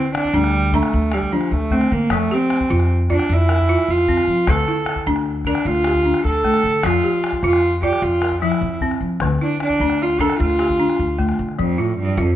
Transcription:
Already playing: balafon D3 E4, cello C4
0.05 calabash click
0.15 cello D4, calabash click
0.25 calabash thump
0.34 upright bass D2, cello G3, balafon D4, calabash click
0.44 calabash click
0.64 calabash click
0.73 cello A3, balafon D4 A#5, calabash thump
0.83 calabash click
0.93 upright bass D2
1.12 cello G3, balafon G4, calabash click
1.22 calabash thump
1.32 cello F3, balafon D4
1.41 calabash click
1.51 upright bass D2, cello A3, calabash click
1.71 balafon A3, cello C4, calabash thump
1.81 calabash click
1.91 upright bass D3, cello A#3
2.10 upright bass F2, balafon F3, cello A3, calabash thump, calabash click
2.31 cello C4, balafon G4, calabash click
2.50 calabash click
2.61 calabash thump, calabash click
2.70 upright bass F2, balafon F4
2.80 calabash click
2.90 calabash click
3.09 cello D4, balafon F4 D5, calabash thump, calabash click
3.19 calabash click
3.29 upright bass F2, cello E4, calabash click
3.39 calabash click
3.49 balafon A#4, calabash click
3.59 calabash thump, calabash click
3.69 balafon F4, calabash click
3.78 calabash click
3.88 upright bass F2, cello F4
3.98 calabash click
4.08 balafon C4, calabash thump, calabash click
4.17 calabash click
4.27 upright bass F3
4.47 upright bass D2, balafon D3, cello A4, calabash thump, calabash click
4.68 balafon E4, calabash click
4.86 calabash click
4.96 calabash thump, calabash click
5.06 upright bass D2, balafon D4
5.16 calabash click
5.26 calabash click
5.45 cello D4, balafon D4 A#4, calabash thump, calabash click
5.55 calabash click
5.65 upright bass D2, cello F4, calabash click
5.75 calabash click
5.84 balafon G4, calabash click
5.95 calabash thump, calabash click
6.04 balafon D4, calabash click
6.14 calabash click
6.24 upright bass D2, cello A4
6.34 calabash click
6.44 balafon A3, calabash thump, calabash click
6.54 calabash click
6.64 upright bass D3
6.83 upright bass F2, balafon F3, cello F4, calabash thump, calabash click
7.03 balafon G4, calabash click
7.24 calabash click
7.33 calabash thump, calabash click
7.43 upright bass F2, balafon F4, cello F4
7.53 calabash click
7.63 calabash click
7.82 balafon F4 D5, cello G4, calabash thump, calabash click
7.93 calabash click
8.02 upright bass F2, cello F4, calabash click
8.12 calabash click
8.22 balafon A#4, calabash click
8.32 calabash thump, calabash click
8.41 balafon F3, cello E4, calabash click
8.52 calabash click
8.61 upright bass F2
8.71 calabash click
8.81 balafon C4, calabash thump, calabash click
8.91 calabash click
9.01 upright bass F3
9.20 upright bass D2, balafon D3, calabash thump, calabash click
9.41 cello D4, balafon E4
9.60 cello D4, calabash click
9.70 calabash thump
9.80 upright bass D2, balafon D4
9.90 calabash click
10.02 cello F4
10.10 calabash click
10.19 balafon D4 A#4, cello A4, calabash thump
10.30 calabash click
10.39 upright bass D2, cello F4
10.50 calabash click
10.59 balafon G4, calabash click
10.70 calabash thump
10.79 balafon D4
10.89 calabash click
10.99 upright bass D2
11.19 balafon A3, calabash thump
11.29 calabash click
11.39 upright bass D3
11.49 calabash click
11.59 upright bass F2, cello F2, balafon F3
11.78 cello A2, balafon F4
11.99 cello G2
12.17 upright bass F2, cello F2, balafon F4

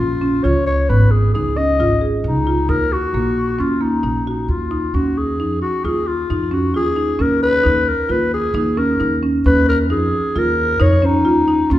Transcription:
Already playing: marimba F4
0.00 upright bass A#1, clarinet F4
0.21 marimba C#4
0.44 upright bass C#2, marimba F4, clarinet C#5
0.66 clarinet C#5
0.89 upright bass G#1, marimba B3, clarinet B4
1.11 clarinet G#4
1.34 upright bass C#2, marimba D#4, clarinet G#4
1.57 marimba C#4, clarinet D#5
1.80 upright bass G#1, marimba F4
2.01 marimba G#4
2.24 upright bass C#2, clarinet D#4
2.47 marimba F4
2.69 upright bass D#2, marimba D#4, clarinet A#4
2.92 clarinet F#4
3.14 upright bass A#1, marimba A#3
3.59 upright bass D#2, marimba C#4, clarinet F4
3.81 marimba A#3, clarinet D#4
4.03 upright bass A#1, marimba D#4
4.27 clarinet D#4, marimba F#4
4.48 upright bass D#2, clarinet F4
4.71 marimba D#4
4.94 upright bass D#2, marimba C#4, clarinet F#4
5.18 clarinet G#4
5.39 upright bass F2, marimba D#4
5.62 clarinet F#4
5.84 upright bass D#2, marimba F4, clarinet G#4
6.07 clarinet F4
6.30 upright bass F2, marimba D#4
6.51 marimba C#4, clarinet F#4
6.74 upright bass D#2, marimba F4, clarinet G#4
6.97 marimba D#4
7.19 upright bass D#2, marimba C#4, clarinet A#4
7.43 clarinet B4
7.64 upright bass D#2, marimba D#4
7.88 clarinet A#4
8.09 upright bass D#2, marimba F4, clarinet B4
8.34 clarinet G#4
8.54 upright bass D#2, marimba D#4
8.77 marimba C#4, clarinet A#4
9.00 upright bass D#2, marimba D#4
9.23 marimba C#4
9.46 upright bass D#2, marimba C#4, clarinet B4
9.69 clarinet A#4
9.90 upright bass F2, marimba D#4, clarinet G#4
10.36 upright bass D#2, marimba F4, clarinet A#4
10.80 upright bass F2, marimba D#4, clarinet C#5
11.02 marimba C#4, clarinet D#4
11.25 upright bass D#2, marimba F4
11.48 marimba D#4
11.70 upright bass D#2, marimba C#4, clarinet F4

